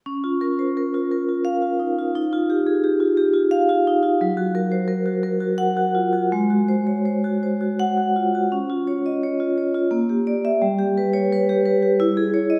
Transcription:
\new Staff \with { instrumentName = "Vibraphone" } { \time 3/4 \key des \major \tempo 4 = 86 << { r2 f''8 r8 | r2 f''8 r8 | r2 ges''8 r8 | r2 ges''8 r8 |
r8. ees''16 r4. r16 fes''16 | r8. des''16 r4. r16 ees''16 | } \\ { des'16 f'16 bes'16 c''16 bes'16 f'16 bes'16 f'8 f'16 ees'16 f'16 | ees'16 f'16 g'16 aes'16 g'16 f'16 g'16 f'8 f'16 ees'16 f'16 | ges16 ges'16 bes'16 c''16 bes'16 ges'16 bes'16 ges'8 ges'16 f'16 ges'16 | aes16 ges'16 c''16 des''16 c''16 ges'16 c''16 ges'8 ges'16 f'16 ges'16 |
des'16 f'16 des''8 des''16 f'16 des''16 f'16 bes16 g'16 d''8 | g16 g'16 b'8 b'16 g'16 b'16 g'16 e'16 gis'16 cis''8 | } >> }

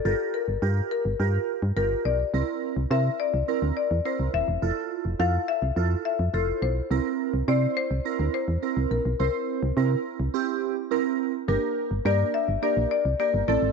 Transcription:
<<
  \new Staff \with { instrumentName = "Marimba" } { \time 4/4 \key g \dorian \tempo 4 = 105 a'8 bes'4 bes'4. bes'8 d''8~ | d''4 e''8 d''4 d''8 c''8 e''8~ | e''4 f''8 e''4 e''8 a'8 c''8~ | c''4 d''8 c''4 c''4 bes'8 |
bes'2. r4 | bes'4 d''8 e''8 d''8 d''8 d''8 d''8 | }
  \new Staff \with { instrumentName = "Synth keys" } { \time 4/4 \key g \dorian <f' g' bes'>8 r8 <f' g' bes'>8 r8 <f' g' bes'>8 r8 <f' g' bes'>8 r8 | <c' e' bes'>8 r8 <c' e' bes'>8 r8 <c' e' bes'>8 r8 <c' e' bes'>8 r8 | <e' f' a'>8 r8 <e' f' a'>8 r8 <e' f' a'>8 r8 <e' f' c''>8 r8 | <c' e' bes'>8 r8 <c' e' c''>8 r8 <c' e' bes'>8 r8 <c' e' bes'>8 r8 |
<c' e' c''>8 r8 <c' e' bes'>8 r8 <c' e' g'>8 r8 <c' e' bes'>8 r8 | <bes d' g' bes'>8 r8 <bes d' g' bes'>8 r8 <bes d' g' bes'>8 r8 <bes d' g' bes'>8 <a c' e' a'>8 | }
  \new Staff \with { instrumentName = "FM bass" } { \clef bass \time 4/4 \key g \dorian g,,16 r8 g,,16 g,8 r16 g,,16 g,8 r16 g,16 g,,8 b,,8 | c,16 r8 c,16 c8 r16 c,16 r16 d,16 r16 e,16 r16 c,16 ees,,16 e,,16 | f,,16 r8 f,,16 f,8 r16 c,16 f,8 r16 f,16 f,,8 b,,8 | c,16 r8 c,16 c8 r16 c,16 r16 d,16 r16 e,16 r16 c,16 bes,,16 b,,16 |
c,16 r8 c,16 c8 r16 c,16 r2 | g,,16 r8 g,,16 g,8 r16 g,,16 r16 bes,,16 r16 c,16 r16 g,,16 a,,16 aes,,16 | }
>>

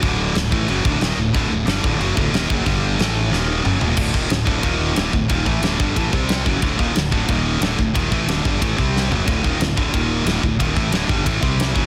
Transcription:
<<
  \new Staff \with { instrumentName = "Distorted electric guitar" } { \clef bass \time 4/4 \tempo 4 = 181 <d, a, d>4 <d, a,>8 <a, e a>8 <fis, cis fis>8 <d, a, d>8 <ees, bes, ees>8 <d, a,>8 | <d, a, d>8 <d, a,>8 <g, d g>8 <d, a, d>8 <fis, cis fis>8 <d, a, d>8 <ees, bes, ees>8 <fis, cis fis>8 | <g, d g>4 <a, e a>4 <ees, bes, ees>4 <ges, des ges>8 <ees, bes, ees>8 | <d, a, d>8 <ees, bes, ees>8 <d, a,>8 <d, a, d>8 <ees, bes, ees>4 <d, a, d>8 <d, a,>8 |
<ees, bes, ees>8 <a, e a>8 <d, a, d>8 <g, d g>8 <a, e a>8 <c g c'>4 <fis, cis fis>8 | <d, a, d>8 <ees, bes, ees>8 <d, a,>8 <d, a, d>8 <ees, bes, ees>4 <d, a, d>8 <d, a,>8 | <ees, bes, ees>8 <a, e a>8 <d, a, d>8 <g, d g>8 <a, e a>8 <c g c'>4 <fis, cis fis>8 | <d, a, d>8 <ees, bes, ees>8 <d, a,>8 <d, a, d>8 <ees, bes, ees>4 <d, a, d>8 <d, a,>8 |
<ees, bes, ees>8 <a, e a>8 <d, a, d>8 <g, d g>8 <a, e a>8 <c g c'>4 <fis, cis fis>8 | }
  \new Staff \with { instrumentName = "Distorted electric guitar" } { \clef bass \time 4/4 <d, a, d>4 <d, a,>8 <a, e a>8 <fis, cis fis>8 <d, a, d>8 <ees, bes, ees>8 <d, a,>8 | <d, a, d>8 <d, a,>8 <g, d g>8 <d, a, d>8 <fis, cis fis>8 <d, a, d>8 <ees, bes, ees>8 <fis, cis fis>8 | <g, d g>4 <a, e a>4 <ees, bes, ees>4 <ges, des ges>8 <ees, bes, ees>8 | <d, a, d>8 <ees, bes, ees>8 <d, a,>8 <d, a, d>8 <ees, bes, ees>4 <d, a, d>8 <d, a,>8 |
<ees, bes, ees>8 <a, e a>8 <d, a, d>8 <g, d g>8 <a, e a>8 <c g c'>4 <fis, cis fis>8 | <d, a, d>8 <ees, bes, ees>8 <d, a,>8 <d, a, d>8 <ees, bes, ees>4 <d, a, d>8 <d, a,>8 | <ees, bes, ees>8 <a, e a>8 <d, a, d>8 <g, d g>8 <a, e a>8 <c g c'>4 <fis, cis fis>8 | <d, a, d>8 <ees, bes, ees>8 <d, a,>8 <d, a, d>8 <ees, bes, ees>4 <d, a, d>8 <d, a,>8 |
<ees, bes, ees>8 <a, e a>8 <d, a, d>8 <g, d g>8 <a, e a>8 <c g c'>4 <fis, cis fis>8 | }
  \new Staff \with { instrumentName = "Fingered electric bass" } { \clef bass \time 4/4 d,,4 d,,8 a,,8 fis,,8 d,,8 ees,,8 d,,8 | d,,8 d,,8 g,,8 d,,8 fis,,8 d,,8 ees,,8 fis,,8 | g,,4 a,,4 ees,,4 ges,,8 ees,,8 | d,,8 ees,,8 d,,8 d,,8 ees,,4 d,,8 d,,8 |
ees,,8 a,,8 d,,8 g,,8 a,,8 c,4 fis,,8 | d,,8 ees,,8 d,,8 d,,8 ees,,4 d,,8 d,,8 | ees,,8 a,,8 d,,8 g,,8 a,,8 c,4 fis,,8 | d,,8 ees,,8 d,,8 d,,8 ees,,4 d,,8 d,,8 |
ees,,8 a,,8 d,,8 g,,8 a,,8 c,4 fis,,8 | }
  \new DrumStaff \with { instrumentName = "Drums" } \drummode { \time 4/4 <cymc bd>4 <cymc sn>8 bd8 cymc8 bd8 <cymc sn>4 | <cymc bd>4 <cymc sn>8 bd8 cymc8 bd8 <cymc sn>8 bd8 | <cymc bd>4 <cymc sn>4 sn4 toml8 tomfh8 | <cymc bd>8 bd8 <rb sn>8 bd8 <bd rb>4 <rb sn>8 bd8 |
<bd rb>8 bd8 <rb sn>8 bd8 <bd rb>8 bd8 <rb sn>8 bd8 | <bd rb>8 bd8 <rb sn>8 bd8 <bd rb>4 <rb sn>8 bd8 | <bd rb>8 bd8 <rb sn>8 bd8 <bd rb>8 bd8 sn8 tomfh8 | <bd rb>8 bd8 <rb sn>8 bd8 <bd rb>4 <rb sn>8 bd8 |
<bd rb>8 bd8 <rb sn>8 bd8 <bd rb>8 bd8 <rb sn>8 bd8 | }
>>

